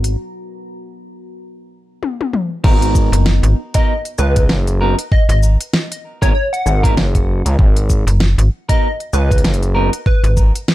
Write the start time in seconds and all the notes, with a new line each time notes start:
Already playing: G#1 B3 D#4 F#4 A#4 A#5
0.04 closed hi-hat
2.03 high tom
2.21 high tom
2.33 mid tom
2.64 G#1 B3 D#4 F#4 A#4, kick, crash
2.82 closed hi-hat
2.95 kick, shaker
3.12 F#1, closed hi-hat
3.26 snare
3.43 G#1, closed hi-hat
3.74 B3 D#4 F#4 A#4 D#5, kick, closed hi-hat
4.05 closed hi-hat
4.18 C#2 B4, cross-stick, shaker
4.36 kick, closed hi-hat
4.49 F#1, snare
4.67 closed hi-hat
4.81 B3 D#4 F#4 A#4
4.99 closed hi-hat
5.12 D#5, kick
5.29 G#1 D#5, closed hi-hat
5.43 shaker
5.61 closed hi-hat
5.73 snare
5.92 closed hi-hat
6.22 G#1 B3 D#4 F#4 A#4 C#5, kick, closed hi-hat
6.35 C#5
6.53 F#5, closed hi-hat
6.66 G#1, cross-stick, shaker
6.83 B3 D#4 F#4 A#4, kick, closed hi-hat
6.97 F#1, snare
7.15 kick, closed hi-hat
7.46 C#2, closed hi-hat
7.59 G#1, kick
7.76 closed hi-hat
7.90 kick, shaker
8.07 F#1, closed hi-hat
8.20 snare
8.38 G#1, closed hi-hat
8.69 B3 D#4 F#4 A#4 D#5, kick, closed hi-hat
9.00 closed hi-hat
9.13 C#2 B4, cross-stick, shaker
9.31 kick, closed hi-hat
9.38 closed hi-hat
9.44 F#1, snare, closed hi-hat
9.54 closed hi-hat
9.63 closed hi-hat
9.75 B3 D#4 F#4 A#4
9.93 closed hi-hat
10.06 B4, kick
10.24 G#1, closed hi-hat
10.37 kick, shaker
10.55 closed hi-hat
10.68 snare